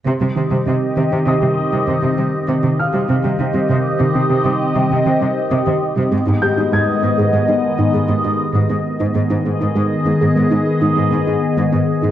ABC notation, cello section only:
X:1
M:5/4
L:1/16
Q:1/4=99
K:Ab
V:1 name="Cello section" clef=bass
C, C, C, C, C, z C, C, C, C, z C, C, C, C, z C, C, z C, | C, C, C, C, C, z C, C, C, C, z C, C, C, C, z C, C, z C, | A,, A,, A,, A,, A,, z A,, A,, A,, A,, z A,, A,, A,, A,, z A,, A,, z A,, | A,, A,, A,, A,, A,, z A,, A,, A,, A,, z A,, A,, A,, A,, z A,, A,, z A,, |]